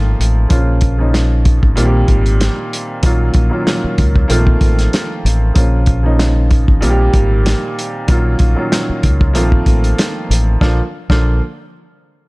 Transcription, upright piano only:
Already playing: D#3 F3 A3 A#3 C4 F4
0.49 C#3 F3 A#3 C#4 F4
0.98 C#3 F3 A#3 C#4 D#4
1.76 A#2 D#3 G3 A#3 C4 F4
1.85 G4
3.02 A#2 D#3 F#3 A#3 C#4 F4
3.50 A#2 D#3 F#3 A#3 C#4 F4
4.28 D#3 F3 A3 A#3 C4 F4
5.54 C#3 F3 A#3 C#4 F4
6.03 C#3 F3 A#3 C#4 D#4
6.81 A#2 D#3 G3 A#3 C4 F4
6.90 G4
8.08 A#2 D#3 F#3 A#3 C#4 F4
8.55 A#2 D#3 F#3 A#3 C#4 F4
9.33 D#3 F3 A3 A#3 C4 F4
10.61 D3 F3 A#3 D4 F4
11.10 D3 F3 A#3 D4 F4

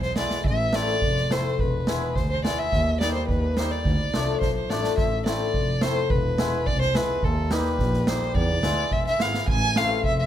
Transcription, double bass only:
Already playing: B1
0.44 A1
1.02 F1
1.59 E1
2.16 D2
2.72 D#2
3.28 D#2
3.85 D2
4.13 C2
4.42 B1
4.69 A1
4.98 A1
5.55 F1
6.11 E1
6.67 C2
7.23 D#2
7.79 A#1
8.35 E2
8.64 D2
8.91 E1
9.19 G#1
9.48 A1
10.04 F1

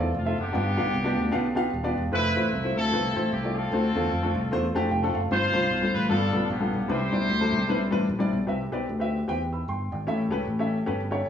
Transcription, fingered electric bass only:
0.00 E2
0.14 F1
0.38 F#1
0.55 G1
0.79 B1
0.94 C2
1.18 D2
1.34 B1
1.73 D#1
1.97 E1
2.13 F1
2.37 A1
2.53 C2
2.76 D2
2.92 C2
3.16 A1
3.32 C2
3.72 D2
3.95 E2
4.11 F2
4.35 C2
4.51 E2
4.75 F2
4.91 F1
5.15 F#1
5.31 G1
5.54 C2
5.70 B1
5.95 A1
6.10 G1
6.33 B1
6.50 A#1
6.73 B1
6.89 C2
7.13 B1
7.29 D2
7.52 C2
7.69 B1
7.92 A1
8.09 A#1
8.33 B1
8.49 C2
8.72 B1
8.89 D2
9.28 E2
9.68 G1
9.92 G#1
10.08 A1
10.31 C#2
10.47 A1
10.87 G1

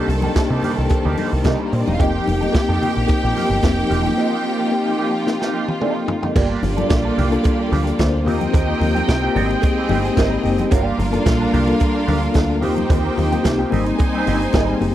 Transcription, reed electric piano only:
Already playing: A#3 D4 D#4 G4
0.34 A#3 D4 D#4 G4
0.89 A#3 D4 D#4 G4
1.44 A#3 D4 D#4 G4
1.99 A#3 C4 D#4 G4
2.52 A#3 C4 D#4 G4
3.07 A#3 C4 D#4 G4
3.62 A#3 C4 D#4 G4
4.17 A#3 C4 D#4 F4
4.71 A#3 C4 D#4 G4
5.25 A#3 C4 D#4 G4
5.80 A#3 C4 D#4 A4
6.76 A#3 D4 F4 A4
7.31 A#3 D4 F4 A4
7.99 A#3 D4 F4 C5
8.25 A#3 C4 F4 G4
8.80 A#3 C4 F4 G4
9.21 A#3 C4 F4 G4
9.35 A#3 C4 D#4 G4
9.89 A#3 C4 D#4 G4
10.15 A#3 C4 D#4 G4
10.41 A#3 C4 D#4 G4
11.12 A#3 D4 F4 A4
11.67 A#3 D4 F4 A4
12.33 A#3 D4 F4 A4
12.61 A#3 C4 F4 G4
13.16 A#3 C4 F4 G4
13.58 A#3 C4 F4 G4
13.70 G3 A#3 C4 D#4
14.24 A#3 C4 D#4 G4
14.52 A#3 C4 D#4 G#4
14.79 A#3 C4 D#4 G4

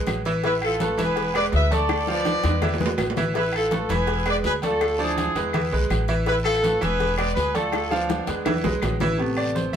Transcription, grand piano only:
Already playing: G#3 G#4 B4
0.26 E3 E4 E5
0.44 E3 E4 E5
0.81 A3 A4 B4
0.98 E3 E4 E5
1.35 G#3 G#4 B4
1.71 A3 A4 D5
2.08 F3 F4 F5
2.45 G#3 G#4 B4
2.63 E3 E4 E5
2.80 G#3 G#4 B4
3.17 E3 E4 E5
3.36 E3 E4 E5
3.71 A3 A4 B4
3.90 E3 E4 E5
4.26 G#3 G#4 B4
4.63 A3 A4 D5
4.99 F3 D4 D5
5.36 G#3 G#4 B4
5.54 E3 E4 E5
5.72 G#3 G#4 B4
6.09 E3 E4 E5
6.26 E3 E4 E5
6.62 A3 A4 B4
6.81 E3 E4 E5
7.18 G#3 G#4 B4
7.55 A3 A4 D5
7.91 F3 F4 F5
8.27 G#3 G#4 B4
8.46 E3 E4 E5
8.64 G#3 G#4 B4
9.01 E3 E4 E5
9.18 C3 A3 B3
9.37 D5
9.55 C5

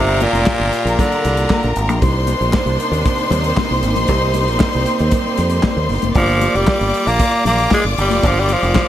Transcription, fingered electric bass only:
Already playing: G1
0.33 F1
0.60 G1
0.85 A#1
1.25 C2
1.64 A#1
1.76 G#1
1.88 A#1
2.02 C2
2.41 A#1
2.66 C2
2.92 D#2
3.31 D#2
3.71 C2
3.83 G#1
3.97 A#1
4.09 C2
4.49 A#1
4.75 C2
5.00 D#2
5.38 F2
5.77 D#2
5.90 G1
6.03 F1
6.15 G1
6.55 F1
6.81 G1
7.07 A#1
7.45 A#1
7.85 G1
7.98 G1
8.11 F1
8.24 G1
8.63 F1

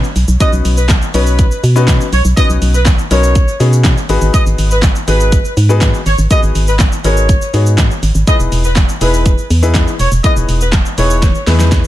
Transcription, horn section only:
0.40 D#5
0.77 B4
1.14 B4
2.13 C#5
2.37 D#5
2.74 B4
3.11 C#5
4.34 D#5
4.71 B4
5.08 B4
6.06 C#5
6.31 D#5
6.67 B4
7.05 C#5
8.28 D#5
8.64 B4
9.01 B4
10.00 C#5
10.24 D#5
10.61 B4
10.98 C#5

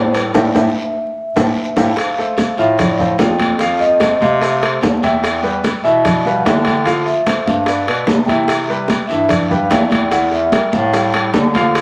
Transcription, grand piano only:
0.14 G3 G4 A4
0.35 E4 G4 A4
0.55 E4 G4 A4
1.36 E4 G4 A4
1.77 E4 G4 A4
2.18 A3 A4 C5
2.58 F3 F4 F5
3.00 A3 A4 C5
3.20 F3 F4 F5
3.60 F3 F4 F5
4.02 A3 A4 C5
4.42 A3 A4 C5
4.62 A3 A4 C5
5.03 E3 E4 E5
5.43 G3 G4 B4
5.84 E3 E4 E5
6.25 G3 G4 B4
6.45 E3 E4 E5
6.86 F3 F4 F5
7.27 A3 A4 C5
7.68 B3 B4 D5
7.88 B3 B4 D5
8.29 E3 E4 E5
8.69 G3 G4 B4
9.10 E3 E4 E5
9.51 G3 G4 B4
9.70 E3 E4 E5
10.12 E3 E4 E5
10.52 G3 G4 A#4
10.94 G3 G4 A4
11.14 G3 G4 A4
11.55 F3 F4 F5

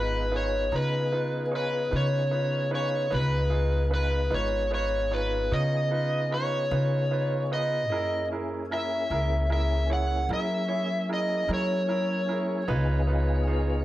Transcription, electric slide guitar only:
Already playing: B4
0.36 C#5
0.76 B4
1.56 B4
1.96 C#5
2.75 C#5
3.14 B4
3.94 B4
4.34 C#5
4.74 C#5
5.14 B4
5.53 D#5
6.34 C#5
7.53 D#5
8.74 E5
9.53 E5
9.93 F#5
10.33 E5
11.13 D#5
11.54 C#5

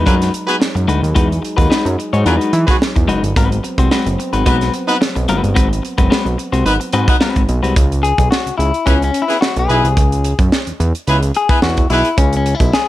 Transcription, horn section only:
0.05 B3 F#4 G#4 B4
0.47 B3 F#4 G#4 B4
2.26 B3 F#4 G#4 B4
2.67 B3 F#4 G#4 B4
4.46 B3 D#4 F#4 B4
4.88 B3 D#4 F#4 B4
6.65 B3 D#4 F#4 B4
7.08 B3 D#4 F#4 B4
8.87 B3 E4 G#4 B4
9.28 B3 E4 G#4 B4
9.69 B3 E4 G#4 B4
11.08 B3 E4 G#4 B4
11.50 B3 E4 G#4 B4
11.92 B3 E4 G#4 B4

